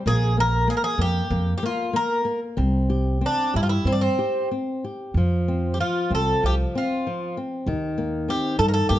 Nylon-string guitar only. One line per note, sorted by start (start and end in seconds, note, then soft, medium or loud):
0.07 0.36 A#3 medium
0.37 0.67 A#3 medium
0.68 0.98 A#3 medium
0.99 1.29 A#3 medium
1.31 1.61 A#3 medium
1.63 1.92 A#3 medium
1.93 2.24 A#3 medium
2.25 2.56 A#3 medium
2.57 3.20 C4 medium
2.90 3.21 G4 medium
3.21 3.53 C4 medium
3.54 3.85 G4 medium
3.85 4.17 C4 soft
4.19 4.50 G4 medium
4.51 4.83 C4 soft
4.84 5.15 G4 soft
5.17 5.79 F3 medium
5.48 5.79 C4 soft
5.80 6.11 F3 medium
6.11 6.42 C4 medium
6.43 6.74 F3 medium
6.75 7.05 C4 medium
7.07 7.36 F3 medium
7.37 7.66 C4 medium
7.67 8.99 D#3 medium
7.98 8.28 A#3 medium
8.28 8.58 C4 medium
8.59 8.89 D#4 medium
8.90 8.99 A#3 medium